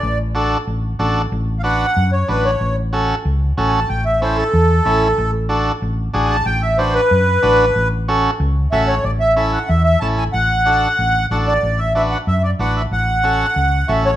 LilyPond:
<<
  \new Staff \with { instrumentName = "Accordion" } { \time 4/4 \key a \major \tempo 4 = 186 d''8 r2. r8 | r4 <f'' fis''>4. cis''8 b'8 cis''8~ | cis''8 r2. <gis'' a''>8 | g''8 e''8 c''8 a'2~ a'8~ |
a'8 r2. <gis'' a''>8 | g''8 e''8 c''8 b'2~ b'8~ | b'8 r2 r8 e''8 cis''8 | d''8 e''8 e''8 fis''8 e''8 e''8 a''8 gis''8 |
fis''2. fis''8 d''8~ | d''8 e''8 e''8 fis''8 e''8 d''8 fis''8 e''8 | fis''2. e''8 cis''8 | }
  \new Staff \with { instrumentName = "Transistor combo organ" } { \time 4/4 \key a \major r4 <d' fis' a'>8 r4. <d' fis' a'>8 r8 | r4 <d' fis' b'>8 r4. <d' fis' b'>8 r8 | r4 <cis' fis' a'>8 r4. <cis' fis' a'>8 r8 | r4 <cis' e' a'>8 r4. <cis' e' a'>8 r8 |
r4 <d' fis' a'>8 r4. <d' fis' gis'>8 r8 | r4 <d' fis' b'>8 r4. <d' fis' b'>8 r8 | r4 <cis' fis' a'>8 r4. <cis' fis' a'>8 r8 | r4 <cis' e' a'>8 r4. <cis' e' a'>8 r8 |
r4 <d' fis' a'>8 r4. <d' fis' a'>8 r8 | r4 <d' fis' b'>8 r4. <d' fis' b'>8 r8 | r4 <cis' fis' a'>8 r4. <cis' fis' a'>8 r8 | }
  \new Staff \with { instrumentName = "Fingered electric bass" } { \clef bass \time 4/4 \key a \major a,,2 a,,4 a,,4 | a,,2 fis,4 a,,4 | a,,2 cis,4 a,,4 | a,,2 e,4 a,,4 |
a,,2 a,,4 a,,4 | a,,2 fis,4 a,,4 | a,,2 cis,4 a,,4 | a,,2 e,4 a,,4 |
a,,2 a,,4 a,,4 | a,,2 fis,4 a,,4 | a,,2 cis,4 a,,4 | }
>>